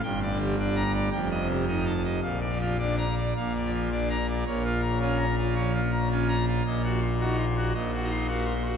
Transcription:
<<
  \new Staff \with { instrumentName = "Pipe organ" } { \time 4/4 \key bes \major \tempo 4 = 110 \tuplet 3/2 { g''8 d''8 g'8 d''8 bes''8 d''8 g''8 ees''8 g'8 ees''8 a''8 ees''8 } | \tuplet 3/2 { f''8 d''8 f'8 d''8 bes''8 d''8 f''8 d''8 f'8 d''8 bes''8 d''8 } | \key bes \minor \tuplet 3/2 { des''8 f'8 bes''8 f'8 bes''8 f'8 des''8 f'8 bes''8 f'8 bes''8 f'8 } | \tuplet 3/2 { ees''8 ges'8 c'''8 ges'8 c'''8 ges'8 ees''8 ges'8 c'''8 ges'8 c'''8 ges'8 } | }
  \new Staff \with { instrumentName = "Pipe organ" } { \clef bass \time 4/4 \key bes \major << { g,8 d8 d'8 r8 f,8 c8 ees'8 r8 | bes,8 f8 d'8 r8 bes,8 f8 d'8 r8 | \key bes \minor bes,4 des'8 r8 f8 r8 des'8 r8 | bes,4 ees'8 r8 bes,8 ees'8 bes8 r8 | } \\ { g,,2 f,,2 | bes,,2 bes,,2 | bes,,1 | bes,,2 bes,,2 | } >> }
>>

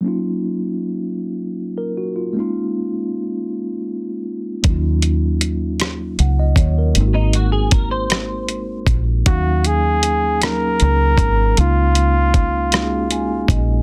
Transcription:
<<
  \new Staff \with { instrumentName = "Clean electric guitar" } { \time 6/8 \key ees \dorian \tempo 4. = 52 r2. | r2. | r2. | r16 ees'16 ges'16 aes'16 bes'16 c''4. r16 |
r2. | r2. | }
  \new Staff \with { instrumentName = "Flugelhorn" } { \time 6/8 \key ees \dorian r2. | r2. | r2. | r2. |
ges'8 aes'4 bes'4. | f'2~ f'8 r8 | }
  \new Staff \with { instrumentName = "Tine electric piano" } { \time 6/8 \key ees \dorian << { r2 r16 bes'16 ges'16 f'16~ | f'16 r2 r8. | r2 ges''16 ees''16 des''16 bes'16~ | bes'16 r2 r8. |
r2. | r2 aes''8 ees''8 | } \\ { <ges bes des' ees' f'>2. | <aes bes des' ees' f'>2. | <ges bes des' ees' f'>2. | <aes bes c' ees' f' ges'>2. |
<f ges bes des' ees' f''>4 r8 <ges bes des' ees' aes'>4 r8 | <aes bes des' ees' f'>4 r8 <aes bes des' ees' ges' aes'>4 r8 | } >> }
  \new Staff \with { instrumentName = "Fingered electric bass" } { \clef bass \time 6/8 \key ees \dorian r2. | r2. | ees,2 des,8 ees,8 | aes,,2~ aes,,8 bes,,8 |
ees,2 des,8 aes,,8 | des,2~ des,8 bes,,8 | }
  \new DrumStaff \with { instrumentName = "Drums" } \drummode { \time 6/8 r4. r4. | r4. r4. | <hh bd>8 hh8 hh8 <hh ss>8 hh8 <hh bd>8 | hh8 hh8 <hh bd>8 <hh ss>8 hh8 <hh bd>8 |
<hh bd>8 hh8 hh8 <hh ss>8 hh8 <hh bd>8 | hh8 hh8 <hh bd>8 <hh ss>8 hh8 <hh bd>8 | }
>>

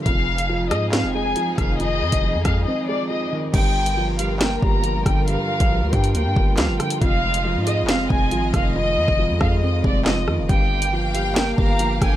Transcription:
<<
  \new Staff \with { instrumentName = "Violin section" } { \time 4/4 \key g \phrygian \tempo 4 = 138 r1 | r1 | r1 | r1 |
r1 | r1 | r4 g''4. f''4 aes''8 | }
  \new Staff \with { instrumentName = "Violin section" } { \time 4/4 \key g \phrygian f''4. ees''8 f''8 aes''4 f''8 | ees''4. f''8 ees''8 d''8 ees''8 r8 | g''4. f''8 g''8 bes''4 g''8 | f''4. g''8 g''4 f''8 g''8 |
f''4. ees''8 f''8 aes''4 f''8 | ees''4. f''8 ees''8 d''8 ees''8 r8 | g''4. f''8 g''8 bes''4 g''8 | }
  \new Staff \with { instrumentName = "String section" } { \time 4/4 \key g \phrygian << { <f aes'>1~ | <f aes'>1 | <g bes'>1~ | <g bes'>1 |
<aes ees''>1~ | <aes ees''>1 | <bes f''>1 | } \\ { ees'1~ | ees'1 | f'1~ | f'1~ |
f'1~ | f'1 | g'1 | } >> }
  \new Staff \with { instrumentName = "Felt piano" } { \clef bass \time 4/4 \key g \phrygian f,4 f8 aes8 c'8 aes8 f8 ees8 | f,4 f8 aes8 c'8 aes8 f8 ees8 | g,4 f8 g8 bes8 g8 f8 d8 | g,4 f8 g8 bes8 g8 f8 d8 |
f,4 f8 aes8 c'8 aes8 f8 ees8 | f,4 f8 aes8 c'8 aes8 f8 ees8 | g,4 f8 g8 bes8 g8 f8 d8 | }
  \new Staff \with { instrumentName = "808-style bass" } { \clef bass \time 4/4 \key g \phrygian f,,4. aes,8. f,,8. r8 f,,8~ | f,,8 f,16 f,,8 f,16 f,8 r2 | g,,2~ g,,8 g,,4 g,,8~ | g,,16 r8 bes,,8 d,16 g,8 d,16 g,16 g,,8 d,16 g,,16 r8 |
f,,4~ f,,16 aes,8~ aes,32 f,,8~ f,,32 f,,8 aes,,8 f,,8~ | f,,8 f,16 f,,8 f,16 f,4 f,,4 f,16 f,,16 | g,,2~ g,,8 g,,4 g,,8 | }
  \new DrumStaff \with { instrumentName = "Drums" } \drummode { \time 4/4 <hh bd>8. hh16 r8 <hh ss>8 <hc hh sn>4 hh8 <hh bd ss>8 | hh8. <hh bd>16 r8 <hh bd ss>8 r4 r4 | <cymc hh bd>8. hh16 r8 hh8 <hc hh sn>8 bd8 hh8 <hh bd ss>8 | hh8. <hh bd>16 r8 <hh bd>16 hh16 hh8 bd8 <hc hh sn>8 <hh ss>16 hh16 |
<hh bd>8. hh16 r8 hh8 <hc hh sn>8 bd8 hh8 <hh bd ss>8 | r8. bd16 r8 <bd ss>8 r8 bd8 <hc sn>8 ss8 | <hh bd>8. hh16 r8 hh8 <hc hh sn>8 bd8 hh8 <hh bd ss>8 | }
>>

